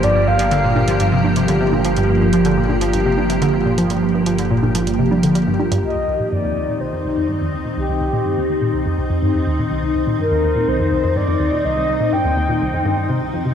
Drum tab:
HH |x--xx--xx--xx--x|x--xx--xx--xx--x|x--xx--xx--xx--x|----------------|
CG |------o---o---o-|------o---o-----|------o---o---o-|----------------|

HH |----------------|----------------|----------------|
CG |----------------|----------------|----------------|